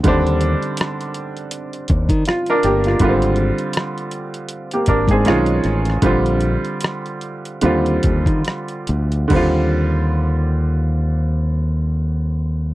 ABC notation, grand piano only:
X:1
M:4/4
L:1/16
Q:"Swing 16ths" 1/4=77
K:Eb
V:1 name="Grand piano"
z12 F [DB] [B,G] F- | F z8 [B,G] [DB] [CA]2 z3 | z16 | z16 |]
V:2 name="Grand piano"
[D,G,CD]12- [D,G,CD]2 z2 | [D,G,B,CF]12 [^D,A,^CF]4 | [D,G,CF]8 [D,G,CF]8 | [D,G,CF]16 |]